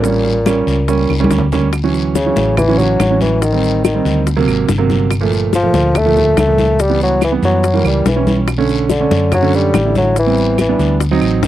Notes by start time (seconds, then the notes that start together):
Already playing: A1 A#2
0.04 G3 A#3 C#4, high bongo, long guiro, maracas
0.25 high bongo, high conga
0.46 G3 A#3 C#4, high bongo, high conga, short guiro, claves, maracas
0.67 C#2, short guiro, maracas
0.88 G3 A#3 C#4, high bongo, high conga, long guiro, maracas
1.10 C#2, high bongo, high conga, claves
1.20 G3 A#3 C#4
1.24 high conga
1.30 D2, high bongo, low bongo, short guiro, maracas
1.38 low conga
1.52 G3 A#3 C#4, high bongo, low conga, short guiro, maracas
1.73 high bongo, high conga, long guiro, claves, maracas
1.84 E3 F#3 C#4
1.94 high bongo, high conga, maracas
2.15 C#3, high bongo, high conga, short guiro, maracas
2.26 E3 F#3 C#4
2.36 A1, high conga, short guiro, maracas
2.57 E3, high bongo, high conga, low conga, long guiro, claves, maracas
2.68 E3 F#3 C#4
2.79 F#3, high bongo, high conga, low conga, maracas
3.00 A1, high bongo, low bongo, high conga, short guiro, claves, maracas
3.10 E3 F#3 C#4
3.21 E3, high bongo, high conga, short guiro, maracas
3.42 D#3, high bongo, high conga, long guiro, maracas
3.52 D#3 G3 C4
3.63 high conga, maracas
3.84 D#3, high bongo, high conga, short guiro, claves, maracas
3.94 D#3 G3 C4
4.05 D2, high bongo, high conga, short guiro, maracas
4.27 high bongo, high conga, long guiro, maracas
4.37 C3 F#3 A#3
4.47 G#1, high bongo, high conga, claves, maracas
4.68 G1, high bongo, low bongo, high conga, short guiro, maracas
4.78 C3 F#3 A#3
4.90 high bongo, high conga, short guiro, maracas
5.11 high bongo, high conga, long guiro, claves, maracas
5.21 A#2 F3 A3
5.32 high bongo, high conga, maracas
5.53 F3, high bongo, high conga, short guiro, maracas
5.63 A#2 F3 A3
5.74 D2, high conga, short guiro, maracas
5.95 A3, high bongo, high conga, low conga, long guiro, claves, maracas
6.06 A#2 F3 A3
6.16 high bongo, high conga, low conga, maracas
6.37 C#2 A3, high bongo, low bongo, high conga, short guiro, claves, maracas
6.47 A#2 F3 A3
6.58 high bongo, high conga, short guiro, maracas
6.79 G3, high bongo, high conga, long guiro, maracas
6.90 E3 G3 B3
7.01 F#3, high conga, maracas
7.21 E3, high bongo, high conga, short guiro, claves, maracas
7.32 E3 G3 B3
7.43 F#2 F#3, high bongo, high conga, short guiro, maracas
7.63 high bongo, high conga, long guiro, maracas
7.74 E3 G3 A#3
7.84 C#2 G3, high bongo, high conga, claves, maracas
8.06 B1 E3, high bongo, low bongo, high conga, short guiro, maracas
8.16 E3 G3 C#4
8.27 high bongo, high conga, short guiro, maracas
8.48 high bongo, high conga, long guiro, claves, maracas
8.58 D3 A3 C#4
8.69 high bongo, high conga, maracas
8.90 D3, high bongo, high conga, short guiro, maracas
9.00 D3 A3 C#4
9.11 F#2, high conga, short guiro, maracas
9.32 F#3, high bongo, high conga, low conga, long guiro, claves, maracas
9.43 D3 A3 C#4
9.53 G3, high bongo, high conga, maracas
9.74 A1, high bongo, low bongo, high conga, short guiro, claves, maracas
9.85 D3 A3 E4
9.95 F#3, high bongo, high conga, short guiro, maracas
10.16 E3, high bongo, long guiro, maracas
10.27 G3 B3 C4
10.37 high conga, maracas
10.58 E3, high bongo, high conga, short guiro, claves, maracas
10.69 G3 B3 D4
10.79 D2, high bongo, high conga, short guiro, maracas
11.00 high bongo, high conga, long guiro, maracas
11.11 F#3 C4 D#4
11.21 A1, high bongo, high conga, claves, maracas
11.43 G1, high bongo, low bongo, high conga, short guiro, maracas